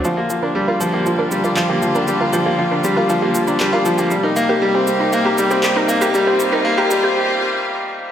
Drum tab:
SH |x-x---x-x-xxx-xx|x-x---x-x-xxx-xx|x-x---x-x-xxx-xx|x-x---x---------|
CP |------------x---|------------x---|------------x---|----------------|